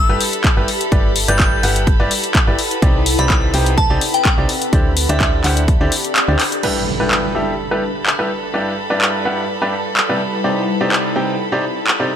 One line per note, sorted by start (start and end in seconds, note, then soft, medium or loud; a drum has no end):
0.00 1.45 G4 loud
0.00 6.62 A4 medium
0.00 1.37 D5 medium
0.00 1.36 A5 medium
0.00 6.62 B5 medium
0.09 0.17 G1 loud
0.09 0.20 G3 loud
0.09 0.20 E4 medium
0.09 0.20 G4 medium
0.09 0.20 A4 medium
0.09 0.20 B4 loud
0.21 open hi-hat loud
0.33 closed hi-hat medium
0.44 kick loud
0.44 clap loud
0.44 closed hi-hat medium
0.57 0.65 G1 loud
0.57 0.67 G3 medium
0.57 0.67 E4 medium
0.57 0.67 G4 medium
0.57 0.67 A4 medium
0.57 0.67 B4 medium
0.68 2.59 E4 medium
0.68 open hi-hat medium
0.81 closed hi-hat medium
0.92 1.26 G1 medium
0.92 1.10 G3 medium
0.92 1.10 E4 medium
0.92 1.10 G4 medium
0.92 1.10 B4 medium
0.92 1.10 D5 medium
0.92 kick loud
0.92 closed hi-hat medium
1.00 3.45 B4 loud
1.16 open hi-hat loud
1.28 1.61 G1 loud
1.28 1.61 G3 medium
1.28 1.61 E4 medium
1.28 1.61 G4 medium
1.28 1.61 B4 medium
1.28 1.61 D5 loud
1.28 1.76 G6 medium
1.28 closed hi-hat medium
1.40 kick loud
1.40 clap loud
1.40 closed hi-hat medium
1.55 3.45 F#5 medium
1.63 1.97 G1 loud
1.63 1.81 G3 medium
1.63 1.81 E4 medium
1.63 1.81 G4 medium
1.63 1.81 B4 medium
1.63 1.81 F#5 medium
1.63 open hi-hat medium
1.76 closed hi-hat medium
1.87 kick loud
1.87 closed hi-hat medium
2.00 2.08 G1 medium
2.00 2.10 G3 loud
2.00 2.10 E4 medium
2.00 2.10 G4 medium
2.00 2.10 B4 medium
2.00 2.10 D5 loud
2.11 open hi-hat medium
2.24 closed hi-hat medium
2.35 kick loud
2.35 clap loud
2.35 closed hi-hat medium
2.47 2.55 G1 loud
2.47 2.57 E4 medium
2.47 2.57 G4 medium
2.47 2.57 B4 medium
2.47 2.57 D5 medium
2.59 5.36 C4 loud
2.59 open hi-hat medium
2.71 closed hi-hat medium
2.82 3.16 C2 loud
2.82 3.00 C3 medium
2.82 3.00 D#4 medium
2.82 3.00 G4 medium
2.82 3.00 C5 medium
2.82 3.00 D5 medium
2.82 kick loud
2.82 closed hi-hat medium
3.06 open hi-hat loud
3.19 3.52 C2 medium
3.19 3.51 C3 medium
3.19 3.51 D#4 medium
3.19 3.51 G4 medium
3.19 3.51 C5 medium
3.19 3.51 D5 loud
3.19 3.31 B5 medium
3.19 closed hi-hat medium
3.25 5.49 G4 medium
3.30 kick loud
3.30 clap loud
3.30 closed hi-hat medium
3.54 3.88 C2 loud
3.54 3.72 C3 medium
3.54 3.72 D#4 medium
3.54 3.72 G4 medium
3.54 3.72 C5 medium
3.54 5.49 D5 medium
3.54 3.72 G5 loud
3.54 open hi-hat medium
3.66 closed hi-hat medium
3.78 3.91 A5 medium
3.78 kick loud
3.78 closed hi-hat medium
3.90 3.98 C2 loud
3.90 4.00 C3 loud
3.90 4.00 D#4 medium
3.90 4.00 G4 medium
3.90 4.00 C5 medium
3.90 4.00 D5 loud
4.01 open hi-hat medium
4.14 4.62 G5 medium
4.14 closed hi-hat medium
4.25 kick loud
4.25 clap loud
4.25 closed hi-hat medium
4.38 4.46 C2 loud
4.38 4.48 C3 medium
4.38 4.48 D#4 medium
4.38 4.48 G4 medium
4.38 4.48 C5 medium
4.38 4.48 D5 medium
4.49 open hi-hat medium
4.62 closed hi-hat medium
4.73 5.07 D2 loud
4.73 4.91 D3 medium
4.73 7.30 D4 medium
4.73 4.91 E4 medium
4.73 4.91 G4 medium
4.73 4.91 C5 medium
4.73 4.91 D5 medium
4.73 kick loud
4.73 closed hi-hat medium
4.97 open hi-hat loud
5.09 5.42 D2 loud
5.09 5.42 D3 medium
5.09 5.42 E4 medium
5.09 5.42 G4 medium
5.09 5.42 C5 medium
5.09 5.42 D5 loud
5.09 5.57 E5 medium
5.09 closed hi-hat medium
5.20 kick loud
5.20 clap loud
5.20 closed hi-hat medium
5.25 7.30 A4 medium
5.44 5.78 D2 medium
5.44 5.62 D3 medium
5.44 5.62 E4 medium
5.44 5.62 G4 medium
5.44 5.62 C5 medium
5.44 7.30 E5 medium
5.44 5.62 F#5 loud
5.44 clap medium
5.44 open hi-hat medium
5.57 closed hi-hat medium
5.68 kick loud
5.68 closed hi-hat medium
5.81 5.89 D2 loud
5.81 5.91 D3 loud
5.81 5.91 E4 medium
5.81 5.91 G4 medium
5.81 5.91 C5 medium
5.81 5.91 D5 loud
5.92 open hi-hat loud
6.05 closed hi-hat medium
6.16 clap loud
6.16 closed hi-hat medium
6.28 6.36 D2 loud
6.28 6.39 D3 medium
6.28 6.39 E4 medium
6.28 6.39 G4 medium
6.28 6.39 C5 medium
6.28 6.39 D5 medium
6.40 clap medium
6.40 open hi-hat medium
6.52 closed hi-hat medium
6.63 6.81 G3 medium
6.63 6.81 E4 medium
6.63 9.01 G4 medium
6.63 6.81 G4 medium
6.63 12.16 A4 medium
6.63 6.81 A4 medium
6.63 6.81 B4 medium
6.63 12.16 B5 medium
6.63 crash medium
6.63 impact medium
7.00 7.32 G3 medium
7.00 7.32 E4 medium
7.00 7.32 G4 medium
7.00 7.32 A4 medium
7.00 7.32 B4 medium
7.11 9.07 A5 medium
7.11 clap loud
7.16 9.06 D5 medium
7.35 7.53 G3 medium
7.35 7.53 E4 medium
7.35 7.53 G4 medium
7.35 7.53 A4 medium
7.35 7.53 E5 medium
7.71 7.82 G3 medium
7.71 7.81 E4 medium
7.71 7.82 G4 medium
7.71 7.81 A4 medium
7.71 7.82 B4 loud
8.06 clap loud
8.19 8.29 G3 medium
8.19 8.29 E4 medium
8.19 8.29 G4 medium
8.19 8.29 A4 medium
8.19 8.29 B4 medium
8.30 10.21 G3 medium
8.37 10.21 E4 medium
8.54 8.72 G2 medium
8.54 8.72 G3 medium
8.54 8.72 E4 medium
8.54 8.72 G4 medium
8.54 8.72 B4 medium
8.54 11.07 B4 medium
8.54 8.72 D5 medium
8.90 9.23 G2 medium
8.90 9.23 G3 medium
8.90 9.23 E4 medium
8.90 9.23 G4 medium
8.90 9.23 B4 medium
8.90 9.23 D5 medium
9.02 clap loud
9.16 11.07 F#5 medium
9.25 9.43 G2 medium
9.25 9.43 G3 medium
9.25 9.43 E4 medium
9.25 9.43 G4 medium
9.25 9.43 B4 medium
9.25 9.43 F#5 medium
9.62 9.72 G2 medium
9.62 9.72 G3 medium
9.62 9.72 E4 medium
9.62 9.72 G4 medium
9.62 9.72 B4 medium
9.62 9.72 D5 medium
9.97 clap loud
10.09 10.19 C3 medium
10.09 10.19 G3 medium
10.09 10.19 E4 medium
10.09 10.19 G4 medium
10.09 10.19 B4 medium
10.09 10.19 D5 medium
10.21 12.16 C4 medium
10.44 10.62 C3 medium
10.44 10.62 D#4 medium
10.44 10.62 G4 medium
10.44 10.62 C5 medium
10.44 10.62 D5 medium
10.49 12.16 G4 loud
10.75 12.16 D5 medium
10.81 11.13 C3 medium
10.81 11.13 D#4 medium
10.81 11.13 G4 medium
10.81 11.13 C5 medium
10.81 11.13 D5 medium
10.92 clap loud
11.16 11.34 C3 medium
11.16 11.34 D#4 medium
11.16 11.34 G4 medium
11.16 11.34 C5 medium
11.16 11.34 G5 medium
11.52 11.62 C3 medium
11.52 11.62 D#4 medium
11.52 11.62 G4 medium
11.52 11.62 C5 medium
11.52 11.62 D5 loud
11.87 clap loud
12.00 12.10 C3 medium
12.00 12.10 D#4 medium
12.00 12.10 G4 medium
12.00 12.10 C5 medium
12.00 12.10 D5 medium